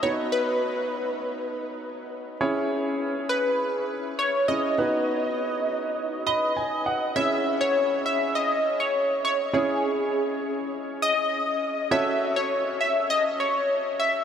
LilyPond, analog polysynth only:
\new Staff \with { instrumentName = "Analog polysynth" } { \time 4/4 \key cis \minor \tempo 4 = 101 cis''8 b'2. r8 | r4. b'4 r8 cis''8 dis''8~ | dis''2~ dis''8 dis''4. | e''8. cis''8. e''8 dis''8. cis''8. cis''8 |
gis'2 r8 dis''4. | e''8. cis''8. e''8 dis''8 cis''4 e''8 | }